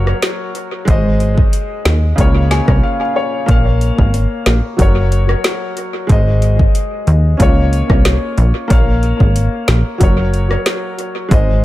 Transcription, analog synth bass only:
Already playing: F#1
0.88 G#1
1.85 D#2
2.18 C#2
2.68 C2
3.49 A#1
3.98 G#1
4.46 A#1
4.79 F#1
6.09 G#1
7.07 D#2
7.40 C#2
7.90 C2
8.38 A#1
8.70 A#1
9.20 G#1
9.68 A#1
10.00 F#1
11.31 G#1

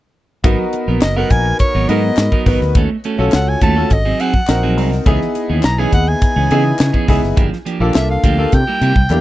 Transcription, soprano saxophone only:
1.03 D#5
1.17 F#5
1.31 G#5
1.60 C#5
1.89 D#5
3.34 F#5
3.49 G#5
3.63 A5
3.93 D#5
4.21 F#5
5.65 A#5
5.79 G#5
5.94 F#5
6.08 G#5
7.96 E5
8.11 F5
8.54 G5

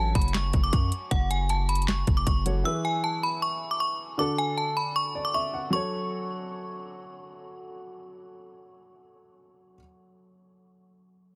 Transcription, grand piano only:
Already playing: F#3 F#4 A4 C#5
2.45 F#3 F#4 A4 C#5
2.64 E3 E4 G#4 B4
4.18 D3 D4 F#4 A4
5.15 D5
5.34 E5
5.54 F#5
5.70 F#3 F#4 A4
5.75 C#5

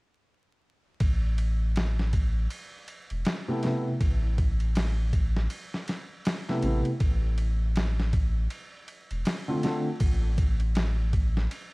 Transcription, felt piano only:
3.48 C3 A3 B3 E4
3.64 C3 A3 B3 E4
6.49 C3 A3 B3 E4
6.64 C3 A3 B3 E4
9.48 D3 A3 C4 F4
9.64 D3 A3 C4 F4

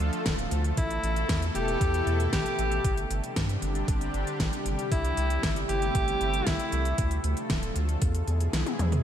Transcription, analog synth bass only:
0.00 D2
0.26 D1
0.52 D2
0.78 A1
1.03 A1
1.29 E2
1.55 E1
1.81 E2
2.07 E2
2.33 A1
2.59 A1
2.85 G1
3.11 G1
3.36 G2
3.62 G1
3.88 G1
4.14 G1
4.40 G1
4.66 G1
4.92 C2
5.18 C2
5.43 G1
5.69 G1
5.95 G1
6.21 G1
6.47 C2
6.73 C2
6.98 D2
7.24 D2
7.50 D1
7.76 D2
8.02 E2
8.28 E2
8.54 B1
8.79 E2

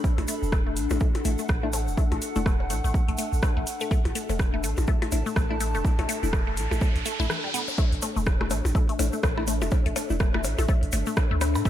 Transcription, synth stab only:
1.25 A3 D4 E4
1.63 A3 D4 E4
2.36 A3 D4 E4
5.12 A3 D4 E4
5.50 A3 D4 E4
6.23 A3 D4 E4
7.20 A3 D4 E4
8.99 A3 D4 E4
9.37 A3 D4 E4
10.10 A3 D4 E4

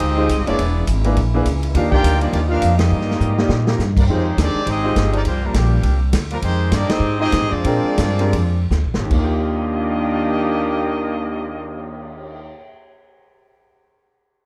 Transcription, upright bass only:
0.00 D2
0.29 C2
0.38 G#1
0.48 F1
0.58 E1
0.87 G#1
1.17 A#1
1.46 C#2
1.74 D#2
2.04 D2
2.32 D#2
2.62 F2
2.91 G2
3.20 G#2
3.49 A#2
3.79 G2
4.08 F2
4.37 D#2
4.55 muted upright bass stroke
4.66 G#1
4.96 G1
5.25 C2
5.54 A#1
5.84 C2
6.13 D2
6.42 F2
6.72 G2
6.89 muted upright bass stroke
6.99 G#2
7.33 C3
7.41 G#2
7.52 F2
7.64 A#2
7.84 muted upright bass stroke
7.98 G2
8.33 F2
8.71 D2
8.83 A#1
8.97 G#1
9.11 D#2

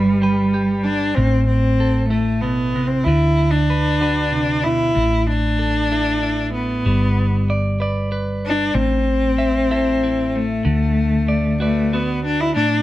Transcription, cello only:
Already playing: G3
0.83 D4
1.15 C4
1.47 C4
2.08 A3
2.41 B3
2.87 C4
3.04 E4
3.51 D4
4.63 E4
5.27 D4
6.55 B3
8.47 D4
8.75 C4
10.35 A3
11.61 A3
11.94 B3
12.25 D4
12.40 E4
12.56 D4

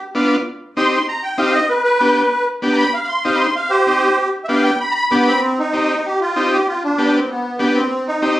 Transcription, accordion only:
0.77 C6
1.08 A#5
1.23 G5
1.38 F5
1.54 D#5
1.69 B4
1.84 B4
2.73 A#5
2.78 B5
2.94 F5
3.04 B5
3.08 C6
3.24 F5
3.35 B5 C6
3.56 F5
3.70 G4 C5
4.44 E5
4.49 F5
4.64 G5
4.80 B5
4.91 A#5 B5
5.12 B3
5.28 C4
5.59 D#4
6.06 G4
6.21 F4
6.52 G4
6.68 F4
6.84 D4
7.14 C4
7.30 B3
7.61 B3
7.75 C4
8.07 D#4

